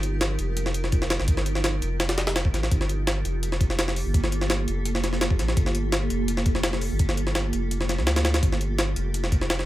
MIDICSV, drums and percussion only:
0, 0, Header, 1, 2, 480
1, 0, Start_track
1, 0, Key_signature, -2, "minor"
1, 0, Tempo, 357143
1, 1726, Time_signature, 4, 2, 24, 8
1, 12978, End_track
2, 0, Start_track
2, 0, Title_t, "Drums"
2, 42, Note_on_c, 9, 42, 68
2, 176, Note_off_c, 9, 42, 0
2, 281, Note_on_c, 9, 38, 116
2, 281, Note_on_c, 9, 42, 86
2, 415, Note_off_c, 9, 38, 0
2, 415, Note_off_c, 9, 42, 0
2, 520, Note_on_c, 9, 42, 69
2, 655, Note_off_c, 9, 42, 0
2, 762, Note_on_c, 9, 42, 91
2, 886, Note_on_c, 9, 38, 52
2, 896, Note_off_c, 9, 42, 0
2, 1000, Note_on_c, 9, 42, 80
2, 1020, Note_off_c, 9, 38, 0
2, 1127, Note_on_c, 9, 38, 45
2, 1135, Note_off_c, 9, 42, 0
2, 1240, Note_on_c, 9, 42, 64
2, 1242, Note_on_c, 9, 36, 89
2, 1261, Note_off_c, 9, 38, 0
2, 1368, Note_on_c, 9, 38, 50
2, 1374, Note_off_c, 9, 42, 0
2, 1377, Note_off_c, 9, 36, 0
2, 1482, Note_off_c, 9, 38, 0
2, 1482, Note_on_c, 9, 38, 104
2, 1482, Note_on_c, 9, 42, 80
2, 1606, Note_off_c, 9, 38, 0
2, 1606, Note_on_c, 9, 38, 52
2, 1616, Note_off_c, 9, 42, 0
2, 1717, Note_on_c, 9, 42, 94
2, 1721, Note_on_c, 9, 36, 113
2, 1740, Note_off_c, 9, 38, 0
2, 1845, Note_on_c, 9, 38, 58
2, 1852, Note_off_c, 9, 42, 0
2, 1856, Note_off_c, 9, 36, 0
2, 1963, Note_on_c, 9, 42, 71
2, 1980, Note_off_c, 9, 38, 0
2, 2087, Note_on_c, 9, 38, 52
2, 2097, Note_off_c, 9, 42, 0
2, 2204, Note_off_c, 9, 38, 0
2, 2204, Note_on_c, 9, 38, 113
2, 2204, Note_on_c, 9, 42, 87
2, 2339, Note_off_c, 9, 38, 0
2, 2339, Note_off_c, 9, 42, 0
2, 2448, Note_on_c, 9, 42, 72
2, 2582, Note_off_c, 9, 42, 0
2, 2686, Note_on_c, 9, 38, 105
2, 2686, Note_on_c, 9, 42, 82
2, 2809, Note_off_c, 9, 38, 0
2, 2809, Note_off_c, 9, 42, 0
2, 2809, Note_on_c, 9, 38, 107
2, 2809, Note_on_c, 9, 42, 81
2, 2926, Note_off_c, 9, 38, 0
2, 2926, Note_off_c, 9, 42, 0
2, 2926, Note_on_c, 9, 38, 108
2, 2926, Note_on_c, 9, 42, 83
2, 3052, Note_off_c, 9, 38, 0
2, 3052, Note_off_c, 9, 42, 0
2, 3052, Note_on_c, 9, 38, 107
2, 3052, Note_on_c, 9, 42, 80
2, 3168, Note_off_c, 9, 38, 0
2, 3168, Note_off_c, 9, 42, 0
2, 3168, Note_on_c, 9, 38, 118
2, 3168, Note_on_c, 9, 42, 89
2, 3293, Note_on_c, 9, 36, 99
2, 3303, Note_off_c, 9, 38, 0
2, 3303, Note_off_c, 9, 42, 0
2, 3414, Note_on_c, 9, 38, 41
2, 3414, Note_on_c, 9, 42, 68
2, 3427, Note_off_c, 9, 36, 0
2, 3539, Note_off_c, 9, 38, 0
2, 3539, Note_on_c, 9, 38, 58
2, 3549, Note_off_c, 9, 42, 0
2, 3647, Note_on_c, 9, 36, 113
2, 3649, Note_on_c, 9, 42, 92
2, 3673, Note_off_c, 9, 38, 0
2, 3775, Note_on_c, 9, 38, 53
2, 3782, Note_off_c, 9, 36, 0
2, 3783, Note_off_c, 9, 42, 0
2, 3890, Note_on_c, 9, 42, 69
2, 3910, Note_off_c, 9, 38, 0
2, 4024, Note_off_c, 9, 42, 0
2, 4129, Note_on_c, 9, 38, 115
2, 4129, Note_on_c, 9, 42, 87
2, 4264, Note_off_c, 9, 38, 0
2, 4264, Note_off_c, 9, 42, 0
2, 4369, Note_on_c, 9, 42, 71
2, 4503, Note_off_c, 9, 42, 0
2, 4608, Note_on_c, 9, 42, 91
2, 4734, Note_on_c, 9, 38, 53
2, 4743, Note_off_c, 9, 42, 0
2, 4847, Note_on_c, 9, 36, 99
2, 4848, Note_on_c, 9, 42, 71
2, 4868, Note_off_c, 9, 38, 0
2, 4973, Note_on_c, 9, 38, 52
2, 4982, Note_off_c, 9, 36, 0
2, 4982, Note_off_c, 9, 42, 0
2, 5089, Note_off_c, 9, 38, 0
2, 5089, Note_on_c, 9, 38, 117
2, 5089, Note_on_c, 9, 42, 90
2, 5214, Note_off_c, 9, 38, 0
2, 5214, Note_on_c, 9, 38, 59
2, 5224, Note_off_c, 9, 42, 0
2, 5327, Note_on_c, 9, 46, 82
2, 5349, Note_off_c, 9, 38, 0
2, 5461, Note_off_c, 9, 46, 0
2, 5567, Note_on_c, 9, 36, 115
2, 5568, Note_on_c, 9, 42, 91
2, 5693, Note_on_c, 9, 38, 57
2, 5702, Note_off_c, 9, 36, 0
2, 5703, Note_off_c, 9, 42, 0
2, 5809, Note_on_c, 9, 42, 72
2, 5828, Note_off_c, 9, 38, 0
2, 5932, Note_on_c, 9, 38, 52
2, 5943, Note_off_c, 9, 42, 0
2, 6046, Note_off_c, 9, 38, 0
2, 6046, Note_on_c, 9, 38, 118
2, 6046, Note_on_c, 9, 42, 88
2, 6180, Note_off_c, 9, 38, 0
2, 6180, Note_off_c, 9, 42, 0
2, 6287, Note_on_c, 9, 42, 69
2, 6421, Note_off_c, 9, 42, 0
2, 6525, Note_on_c, 9, 42, 90
2, 6652, Note_on_c, 9, 38, 55
2, 6659, Note_off_c, 9, 42, 0
2, 6769, Note_off_c, 9, 38, 0
2, 6769, Note_on_c, 9, 38, 55
2, 6769, Note_on_c, 9, 42, 71
2, 6891, Note_off_c, 9, 38, 0
2, 6891, Note_on_c, 9, 38, 41
2, 6903, Note_off_c, 9, 42, 0
2, 7005, Note_off_c, 9, 38, 0
2, 7005, Note_on_c, 9, 38, 120
2, 7005, Note_on_c, 9, 42, 90
2, 7130, Note_on_c, 9, 36, 97
2, 7139, Note_off_c, 9, 38, 0
2, 7139, Note_off_c, 9, 42, 0
2, 7247, Note_on_c, 9, 38, 41
2, 7247, Note_on_c, 9, 42, 68
2, 7264, Note_off_c, 9, 36, 0
2, 7371, Note_off_c, 9, 38, 0
2, 7371, Note_on_c, 9, 38, 58
2, 7382, Note_off_c, 9, 42, 0
2, 7484, Note_on_c, 9, 42, 89
2, 7485, Note_on_c, 9, 36, 114
2, 7505, Note_off_c, 9, 38, 0
2, 7610, Note_on_c, 9, 38, 51
2, 7619, Note_off_c, 9, 36, 0
2, 7619, Note_off_c, 9, 42, 0
2, 7724, Note_on_c, 9, 42, 70
2, 7745, Note_off_c, 9, 38, 0
2, 7859, Note_off_c, 9, 42, 0
2, 7962, Note_on_c, 9, 38, 116
2, 7962, Note_on_c, 9, 42, 85
2, 8096, Note_off_c, 9, 38, 0
2, 8096, Note_off_c, 9, 42, 0
2, 8202, Note_on_c, 9, 42, 70
2, 8336, Note_off_c, 9, 42, 0
2, 8442, Note_on_c, 9, 42, 90
2, 8564, Note_on_c, 9, 38, 53
2, 8576, Note_off_c, 9, 42, 0
2, 8679, Note_on_c, 9, 42, 69
2, 8682, Note_on_c, 9, 36, 101
2, 8699, Note_off_c, 9, 38, 0
2, 8803, Note_on_c, 9, 38, 54
2, 8813, Note_off_c, 9, 42, 0
2, 8816, Note_off_c, 9, 36, 0
2, 8917, Note_off_c, 9, 38, 0
2, 8917, Note_on_c, 9, 38, 120
2, 8917, Note_on_c, 9, 42, 91
2, 9046, Note_off_c, 9, 38, 0
2, 9046, Note_on_c, 9, 38, 59
2, 9051, Note_off_c, 9, 42, 0
2, 9159, Note_on_c, 9, 46, 82
2, 9181, Note_off_c, 9, 38, 0
2, 9293, Note_off_c, 9, 46, 0
2, 9399, Note_on_c, 9, 42, 92
2, 9402, Note_on_c, 9, 36, 116
2, 9526, Note_on_c, 9, 38, 61
2, 9534, Note_off_c, 9, 42, 0
2, 9537, Note_off_c, 9, 36, 0
2, 9642, Note_on_c, 9, 42, 69
2, 9661, Note_off_c, 9, 38, 0
2, 9767, Note_on_c, 9, 38, 53
2, 9776, Note_off_c, 9, 42, 0
2, 9880, Note_off_c, 9, 38, 0
2, 9880, Note_on_c, 9, 38, 115
2, 9880, Note_on_c, 9, 42, 85
2, 10014, Note_off_c, 9, 38, 0
2, 10014, Note_off_c, 9, 42, 0
2, 10120, Note_on_c, 9, 42, 73
2, 10255, Note_off_c, 9, 42, 0
2, 10365, Note_on_c, 9, 42, 91
2, 10491, Note_on_c, 9, 38, 54
2, 10499, Note_off_c, 9, 42, 0
2, 10608, Note_off_c, 9, 38, 0
2, 10608, Note_on_c, 9, 38, 54
2, 10608, Note_on_c, 9, 42, 70
2, 10731, Note_off_c, 9, 38, 0
2, 10731, Note_on_c, 9, 38, 43
2, 10742, Note_off_c, 9, 42, 0
2, 10844, Note_off_c, 9, 38, 0
2, 10844, Note_on_c, 9, 38, 108
2, 10844, Note_on_c, 9, 42, 81
2, 10971, Note_off_c, 9, 38, 0
2, 10971, Note_off_c, 9, 42, 0
2, 10971, Note_on_c, 9, 38, 111
2, 10971, Note_on_c, 9, 42, 83
2, 11085, Note_off_c, 9, 38, 0
2, 11085, Note_off_c, 9, 42, 0
2, 11085, Note_on_c, 9, 38, 102
2, 11085, Note_on_c, 9, 42, 80
2, 11210, Note_off_c, 9, 38, 0
2, 11210, Note_off_c, 9, 42, 0
2, 11210, Note_on_c, 9, 38, 108
2, 11210, Note_on_c, 9, 42, 84
2, 11327, Note_on_c, 9, 36, 116
2, 11328, Note_off_c, 9, 42, 0
2, 11328, Note_on_c, 9, 42, 91
2, 11345, Note_off_c, 9, 38, 0
2, 11457, Note_on_c, 9, 38, 51
2, 11461, Note_off_c, 9, 36, 0
2, 11462, Note_off_c, 9, 42, 0
2, 11570, Note_on_c, 9, 42, 70
2, 11591, Note_off_c, 9, 38, 0
2, 11704, Note_off_c, 9, 42, 0
2, 11807, Note_on_c, 9, 38, 114
2, 11807, Note_on_c, 9, 42, 87
2, 11942, Note_off_c, 9, 38, 0
2, 11942, Note_off_c, 9, 42, 0
2, 12046, Note_on_c, 9, 42, 69
2, 12181, Note_off_c, 9, 42, 0
2, 12287, Note_on_c, 9, 42, 91
2, 12413, Note_on_c, 9, 38, 52
2, 12422, Note_off_c, 9, 42, 0
2, 12526, Note_on_c, 9, 36, 99
2, 12526, Note_on_c, 9, 42, 69
2, 12548, Note_off_c, 9, 38, 0
2, 12653, Note_on_c, 9, 38, 53
2, 12660, Note_off_c, 9, 36, 0
2, 12661, Note_off_c, 9, 42, 0
2, 12768, Note_off_c, 9, 38, 0
2, 12768, Note_on_c, 9, 38, 119
2, 12768, Note_on_c, 9, 42, 93
2, 12892, Note_off_c, 9, 38, 0
2, 12892, Note_on_c, 9, 38, 59
2, 12902, Note_off_c, 9, 42, 0
2, 12978, Note_off_c, 9, 38, 0
2, 12978, End_track
0, 0, End_of_file